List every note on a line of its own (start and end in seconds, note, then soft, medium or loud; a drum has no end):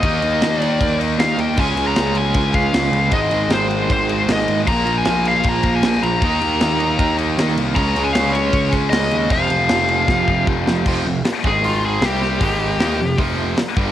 0.00 0.21 D#2 medium
0.00 0.98 D#3 medium
0.00 0.60 D#5 loud
0.00 kick loud
0.00 crash medium
0.04 0.99 A#3 medium
0.04 0.98 D#4 loud
0.22 0.41 D#2 medium
0.22 crash medium
0.42 0.78 D#2 medium
0.42 snare loud
0.42 crash medium
0.60 0.97 D5 loud
0.60 crash medium
0.81 1.16 D#2 medium
0.81 kick loud
0.81 crash medium
0.99 1.17 D#3 medium
0.99 1.18 A#3 medium
0.99 1.18 D#4 medium
0.99 crash medium
1.18 1.37 D#2 medium
1.18 1.56 D#3 medium
1.18 1.57 A#3 medium
1.18 1.39 F5 medium
1.18 snare loud
1.18 crash medium
1.23 1.58 D#4 medium
1.38 1.56 D#2 medium
1.38 1.59 G5 medium
1.38 crash medium
1.57 1.76 C#2 loud
1.57 2.53 C#3 medium
1.57 2.54 G#3 medium
1.57 2.52 C#4 loud
1.57 1.87 G#5 loud
1.57 kick loud
1.57 crash medium
1.77 1.95 C#2 medium
1.77 crash medium
1.87 2.17 A#5 loud
1.96 2.32 C#2 medium
1.96 snare loud
1.96 crash medium
2.15 2.53 G#5 loud
2.15 crash medium
2.34 2.71 C#2 medium
2.34 kick loud
2.34 crash medium
2.53 2.73 G#3 medium
2.53 2.72 C#4 medium
2.53 3.15 F5 loud
2.53 kick medium
2.53 crash medium
2.57 2.71 C#3 medium
2.72 2.91 C#2 medium
2.72 3.11 C#3 medium
2.72 3.12 G#3 medium
2.72 3.13 C#4 medium
2.72 snare loud
2.72 crash medium
2.84 snare soft
2.91 3.10 C#2 medium
2.91 crash medium
3.11 3.30 G#1 loud
3.11 4.08 G#2 medium
3.11 4.09 D#3 medium
3.11 4.08 G#3 loud
3.11 3.49 D#5 medium
3.11 kick loud
3.11 crash medium
3.31 3.49 G#1 medium
3.31 crash medium
3.50 3.86 G#1 medium
3.50 3.91 C5 medium
3.50 snare loud
3.50 crash medium
3.71 crash medium
3.90 4.26 G#1 medium
3.90 4.31 C5 medium
3.90 kick loud
3.90 crash medium
4.09 4.29 D#3 medium
4.09 4.27 G#3 medium
4.09 crash medium
4.13 4.27 G#2 medium
4.28 4.47 G#1 medium
4.28 4.66 G#2 medium
4.28 4.66 D#3 medium
4.28 4.68 G#3 medium
4.28 snare loud
4.28 crash medium
4.32 4.58 D#5 medium
4.39 snare soft
4.48 4.66 G#1 medium
4.48 crash medium
4.67 4.85 A#1 loud
4.67 5.63 A#2 medium
4.67 5.64 F3 medium
4.67 5.62 A#3 medium
4.67 4.98 A#5 loud
4.67 kick loud
4.67 crash medium
4.86 5.04 A#1 medium
4.86 crash medium
4.98 5.27 G#5 medium
5.05 5.42 A#1 medium
5.05 snare loud
5.05 crash medium
5.25 5.47 F5 medium
5.25 crash medium
5.43 5.81 A#1 medium
5.43 kick loud
5.43 crash medium
5.49 5.77 A#5 medium
5.63 5.82 A#2 medium
5.63 5.83 F3 medium
5.63 5.82 A#3 medium
5.63 kick medium
5.63 crash medium
5.75 6.05 G#5 medium
5.83 6.02 A#1 medium
5.83 6.21 A#2 medium
5.83 6.22 F3 medium
5.83 snare loud
5.83 crash medium
5.87 6.22 A#3 medium
5.93 snare soft
6.03 6.21 A#1 medium
6.03 7.15 A#5 medium
6.03 crash medium
6.21 6.40 D#2 loud
6.21 7.18 D#3 medium
6.21 7.18 A#3 medium
6.21 7.16 D#4 loud
6.21 kick loud
6.21 crash medium
6.42 6.60 D#2 medium
6.42 crash medium
6.61 6.97 D#2 medium
6.61 snare loud
6.61 crash medium
6.80 crash medium
6.99 7.35 D#2 medium
6.99 kick loud
6.99 crash medium
7.17 7.37 A#3 medium
7.17 7.36 D#4 medium
7.17 crash medium
7.21 7.35 D#3 medium
7.37 7.56 D#2 medium
7.37 7.74 D#3 medium
7.37 7.76 A#3 medium
7.37 7.77 D#4 medium
7.37 snare loud
7.37 crash medium
7.48 snare soft
7.57 7.75 C2 loud
7.57 crash medium
7.75 7.95 C#2 loud
7.75 8.71 C#3 medium
7.75 8.72 G#3 loud
7.75 8.69 C#4 loud
7.75 8.06 A#5 loud
7.75 kick loud
7.75 crash medium
7.96 8.14 C#2 loud
7.96 crash medium
8.04 8.13 G#5 loud
8.13 8.51 C#2 medium
8.13 8.34 F5 loud
8.13 snare loud
8.13 crash medium
8.33 8.70 C#5 loud
8.33 crash medium
8.53 8.90 C#2 medium
8.53 kick loud
8.53 crash medium
8.70 8.91 G#3 medium
8.70 8.90 C#4 medium
8.70 kick medium
8.70 crash medium
8.74 8.88 C#3 medium
8.90 9.10 C#2 medium
8.90 9.29 C#3 medium
8.90 9.34 G#3 medium
8.90 9.31 D#5 medium
8.90 snare loud
8.90 crash medium
8.94 9.31 C#4 medium
9.03 snare soft
9.11 9.29 D#2 medium
9.11 crash medium
9.30 9.49 F1 loud
9.30 10.27 F2 medium
9.30 10.28 C3 medium
9.30 10.26 F3 loud
9.30 10.44 F5 medium
9.30 kick loud
9.30 crash medium
9.50 9.68 F1 medium
9.50 crash medium
9.69 10.06 F1 medium
9.69 snare loud
9.69 crash medium
9.89 crash medium
10.08 10.44 F1 medium
10.08 kick loud
10.08 snare medium
10.27 10.44 F2 medium
10.27 10.46 C3 medium
10.27 10.46 F3 medium
10.27 kick medium
10.45 10.65 F1 medium
10.45 10.84 F2 medium
10.45 10.85 C3 medium
10.45 10.86 F3 medium
10.45 kick medium
10.67 10.85 F1 medium
10.67 snare medium
10.85 11.05 F1 loud
10.85 11.04 F2 medium
10.85 11.04 C3 medium
10.85 11.06 F3 medium
10.85 kick loud
10.85 crash loud
11.05 11.23 F1 medium
11.05 11.21 F2 medium
11.05 11.21 C3 medium
11.24 muted picked electric bass stroke soft
11.24 muted distorted electric guitar stroke medium
11.24 muted overdriven electric guitar stroke medium
11.24 snare loud
11.24 open hi-hat medium
11.43 11.99 G#1 medium
11.43 12.01 G#2 medium
11.43 12.02 D#3 loud
11.43 12.02 G#3 loud
11.43 kick loud
11.47 11.65 G#4 medium
11.64 11.85 F4 medium
11.64 open hi-hat medium
11.85 12.05 G#4 medium
12.02 12.38 C2 medium
12.02 12.40 C3 loud
12.02 12.41 G3 loud
12.02 12.41 C4 loud
12.02 13.17 G4 medium
12.02 snare loud
12.02 open hi-hat medium
12.22 snare soft
12.39 12.77 G#1 loud
12.39 12.79 G#2 medium
12.39 12.78 D#3 loud
12.39 12.79 G#3 loud
12.39 kick loud
12.39 open hi-hat medium
12.79 12.99 D#2 medium
12.79 12.98 D#3 medium
12.79 12.99 A#3 medium
12.79 12.99 D#4 medium
12.79 snare loud
12.79 open hi-hat medium
12.99 13.17 F1 medium
12.99 13.15 F2 medium
12.99 13.15 C3 medium
13.17 13.55 F1 medium
13.17 13.57 F2 medium
13.17 13.57 C3 medium
13.17 13.57 F3 loud
13.17 kick medium
13.17 open hi-hat medium
13.57 muted picked electric bass stroke soft
13.57 muted overdriven electric guitar stroke medium
13.57 muted distorted electric guitar stroke medium
13.57 snare loud
13.57 open hi-hat medium
13.77 13.92 G1 loud
13.77 13.92 G2 medium
13.77 13.92 D3 medium
13.77 13.92 G3 loud
13.77 kick loud